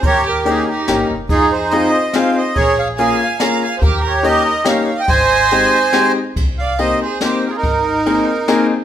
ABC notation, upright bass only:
X:1
M:3/4
L:1/8
Q:"Swing" 1/4=142
K:Ab
V:1 name="Upright bass" clef=bass
E,,4 G,,, F,,, | F,,4 z2 | B,,,4 z2 | E,,4 z2 |
A,,,4 z2 | [K:Cm] C,,4 z2 | A,,,4 z2 |]